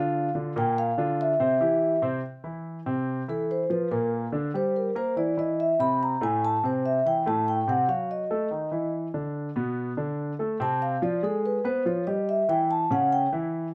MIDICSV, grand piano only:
0, 0, Header, 1, 2, 480
1, 0, Start_track
1, 0, Key_signature, 0, "major"
1, 0, Tempo, 418702
1, 641, Time_signature, 4, 2, 24, 8
1, 15752, End_track
2, 0, Start_track
2, 0, Title_t, "Grand piano"
2, 0, Program_c, 0, 0
2, 0, Note_on_c, 0, 50, 66
2, 0, Note_on_c, 0, 62, 73
2, 0, Note_on_c, 0, 65, 80
2, 316, Note_off_c, 0, 50, 0
2, 317, Note_off_c, 0, 62, 0
2, 321, Note_off_c, 0, 65, 0
2, 399, Note_on_c, 0, 50, 66
2, 402, Note_on_c, 0, 62, 57
2, 403, Note_on_c, 0, 65, 57
2, 597, Note_off_c, 0, 50, 0
2, 598, Note_off_c, 0, 62, 0
2, 599, Note_off_c, 0, 65, 0
2, 641, Note_on_c, 0, 46, 81
2, 645, Note_on_c, 0, 70, 74
2, 646, Note_on_c, 0, 58, 76
2, 1035, Note_off_c, 0, 46, 0
2, 1037, Note_off_c, 0, 58, 0
2, 1037, Note_off_c, 0, 70, 0
2, 1120, Note_on_c, 0, 50, 74
2, 1125, Note_on_c, 0, 62, 72
2, 1130, Note_on_c, 0, 65, 74
2, 1514, Note_off_c, 0, 50, 0
2, 1517, Note_off_c, 0, 62, 0
2, 1520, Note_off_c, 0, 65, 0
2, 1600, Note_on_c, 0, 48, 70
2, 1602, Note_on_c, 0, 60, 75
2, 1609, Note_on_c, 0, 72, 82
2, 1798, Note_off_c, 0, 48, 0
2, 1799, Note_off_c, 0, 60, 0
2, 1803, Note_off_c, 0, 72, 0
2, 1839, Note_on_c, 0, 52, 65
2, 1841, Note_on_c, 0, 64, 70
2, 1845, Note_on_c, 0, 67, 72
2, 2234, Note_off_c, 0, 52, 0
2, 2235, Note_off_c, 0, 64, 0
2, 2237, Note_off_c, 0, 67, 0
2, 2314, Note_on_c, 0, 48, 70
2, 2320, Note_on_c, 0, 60, 76
2, 2322, Note_on_c, 0, 72, 74
2, 2514, Note_off_c, 0, 48, 0
2, 2517, Note_off_c, 0, 60, 0
2, 2519, Note_off_c, 0, 72, 0
2, 2794, Note_on_c, 0, 52, 62
2, 2798, Note_on_c, 0, 64, 60
2, 3191, Note_off_c, 0, 52, 0
2, 3193, Note_off_c, 0, 64, 0
2, 3280, Note_on_c, 0, 48, 67
2, 3282, Note_on_c, 0, 60, 73
2, 3674, Note_off_c, 0, 48, 0
2, 3676, Note_off_c, 0, 60, 0
2, 3763, Note_on_c, 0, 52, 63
2, 3764, Note_on_c, 0, 64, 69
2, 4157, Note_off_c, 0, 52, 0
2, 4157, Note_off_c, 0, 64, 0
2, 4237, Note_on_c, 0, 53, 63
2, 4242, Note_on_c, 0, 65, 59
2, 4436, Note_off_c, 0, 53, 0
2, 4439, Note_off_c, 0, 65, 0
2, 4482, Note_on_c, 0, 46, 69
2, 4486, Note_on_c, 0, 58, 71
2, 4876, Note_off_c, 0, 46, 0
2, 4878, Note_off_c, 0, 58, 0
2, 4957, Note_on_c, 0, 50, 73
2, 4964, Note_on_c, 0, 62, 68
2, 5156, Note_off_c, 0, 50, 0
2, 5161, Note_off_c, 0, 62, 0
2, 5206, Note_on_c, 0, 55, 66
2, 5207, Note_on_c, 0, 67, 66
2, 5598, Note_off_c, 0, 55, 0
2, 5599, Note_off_c, 0, 67, 0
2, 5679, Note_on_c, 0, 58, 67
2, 5685, Note_on_c, 0, 70, 71
2, 5877, Note_off_c, 0, 58, 0
2, 5881, Note_off_c, 0, 70, 0
2, 5920, Note_on_c, 0, 52, 63
2, 5925, Note_on_c, 0, 64, 66
2, 6118, Note_off_c, 0, 52, 0
2, 6121, Note_off_c, 0, 64, 0
2, 6159, Note_on_c, 0, 52, 61
2, 6162, Note_on_c, 0, 64, 64
2, 6554, Note_off_c, 0, 52, 0
2, 6556, Note_off_c, 0, 64, 0
2, 6640, Note_on_c, 0, 48, 65
2, 6646, Note_on_c, 0, 60, 67
2, 7035, Note_off_c, 0, 48, 0
2, 7039, Note_off_c, 0, 60, 0
2, 7118, Note_on_c, 0, 45, 77
2, 7125, Note_on_c, 0, 57, 79
2, 7514, Note_off_c, 0, 45, 0
2, 7518, Note_off_c, 0, 57, 0
2, 7606, Note_on_c, 0, 48, 68
2, 7608, Note_on_c, 0, 60, 69
2, 7998, Note_off_c, 0, 48, 0
2, 7999, Note_off_c, 0, 60, 0
2, 8089, Note_on_c, 0, 52, 61
2, 8092, Note_on_c, 0, 64, 56
2, 8283, Note_off_c, 0, 52, 0
2, 8285, Note_off_c, 0, 64, 0
2, 8323, Note_on_c, 0, 45, 77
2, 8330, Note_on_c, 0, 57, 74
2, 8716, Note_off_c, 0, 45, 0
2, 8721, Note_off_c, 0, 57, 0
2, 8797, Note_on_c, 0, 48, 75
2, 8802, Note_on_c, 0, 60, 69
2, 8996, Note_off_c, 0, 48, 0
2, 8999, Note_off_c, 0, 60, 0
2, 9034, Note_on_c, 0, 54, 63
2, 9040, Note_on_c, 0, 66, 67
2, 9431, Note_off_c, 0, 54, 0
2, 9434, Note_off_c, 0, 66, 0
2, 9522, Note_on_c, 0, 57, 65
2, 9523, Note_on_c, 0, 69, 70
2, 9719, Note_off_c, 0, 57, 0
2, 9719, Note_off_c, 0, 69, 0
2, 9753, Note_on_c, 0, 51, 59
2, 9757, Note_on_c, 0, 63, 60
2, 9954, Note_off_c, 0, 51, 0
2, 9956, Note_off_c, 0, 63, 0
2, 9991, Note_on_c, 0, 52, 63
2, 9999, Note_on_c, 0, 64, 57
2, 10389, Note_off_c, 0, 52, 0
2, 10393, Note_off_c, 0, 64, 0
2, 10478, Note_on_c, 0, 50, 61
2, 10480, Note_on_c, 0, 62, 64
2, 10873, Note_off_c, 0, 50, 0
2, 10874, Note_off_c, 0, 62, 0
2, 10957, Note_on_c, 0, 47, 78
2, 10960, Note_on_c, 0, 59, 79
2, 11352, Note_off_c, 0, 47, 0
2, 11354, Note_off_c, 0, 59, 0
2, 11432, Note_on_c, 0, 50, 71
2, 11438, Note_on_c, 0, 62, 67
2, 11829, Note_off_c, 0, 50, 0
2, 11832, Note_off_c, 0, 62, 0
2, 11914, Note_on_c, 0, 57, 62
2, 11920, Note_on_c, 0, 69, 65
2, 12113, Note_off_c, 0, 57, 0
2, 12117, Note_off_c, 0, 69, 0
2, 12150, Note_on_c, 0, 48, 71
2, 12151, Note_on_c, 0, 60, 82
2, 12548, Note_off_c, 0, 48, 0
2, 12548, Note_off_c, 0, 60, 0
2, 12633, Note_on_c, 0, 53, 73
2, 12637, Note_on_c, 0, 65, 74
2, 12832, Note_off_c, 0, 53, 0
2, 12835, Note_off_c, 0, 65, 0
2, 12871, Note_on_c, 0, 56, 73
2, 12874, Note_on_c, 0, 68, 69
2, 13268, Note_off_c, 0, 56, 0
2, 13269, Note_off_c, 0, 68, 0
2, 13349, Note_on_c, 0, 59, 71
2, 13353, Note_on_c, 0, 71, 72
2, 13549, Note_off_c, 0, 59, 0
2, 13552, Note_off_c, 0, 71, 0
2, 13590, Note_on_c, 0, 53, 66
2, 13594, Note_on_c, 0, 65, 68
2, 13790, Note_off_c, 0, 53, 0
2, 13792, Note_off_c, 0, 65, 0
2, 13838, Note_on_c, 0, 67, 63
2, 13839, Note_on_c, 0, 55, 63
2, 14231, Note_off_c, 0, 67, 0
2, 14232, Note_off_c, 0, 55, 0
2, 14315, Note_on_c, 0, 52, 76
2, 14316, Note_on_c, 0, 64, 58
2, 14709, Note_off_c, 0, 52, 0
2, 14710, Note_off_c, 0, 64, 0
2, 14794, Note_on_c, 0, 49, 77
2, 14798, Note_on_c, 0, 61, 70
2, 15188, Note_off_c, 0, 49, 0
2, 15190, Note_off_c, 0, 61, 0
2, 15276, Note_on_c, 0, 52, 74
2, 15279, Note_on_c, 0, 64, 72
2, 15669, Note_off_c, 0, 52, 0
2, 15671, Note_off_c, 0, 64, 0
2, 15752, End_track
0, 0, End_of_file